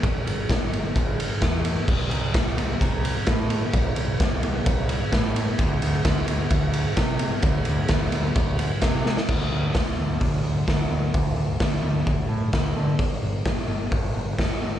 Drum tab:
CC |----------------|x---------------|----------------|----------------|
RD |x-x-x-x-x-x-x-x-|--x-x-x-x-x-x-x-|x-x-x-x-x-x-x-x-|x-x-x-x-x-x-x-x-|
HH |----------------|----------------|----------------|----------------|
SD |----o-------o---|----o-------o---|----o-------o---|----o-------o---|
BD |o---o---o---o---|o---o---o---o---|o---o---o---o---|o---o---o---o---|

CC |----------------|x---------------|----------------|----------------|
RD |x-x-x-x-x-x-x---|----------------|----------------|----------------|
HH |----------------|----o---o---o---|o---o---o---o---|o---o---o---o---|
SD |----o-------o-oo|----o-------o---|----o-------o---|----o-------o---|
BD |o---o---o---o---|o---o---o---o---|o---o---o---o---|o---o---o---o---|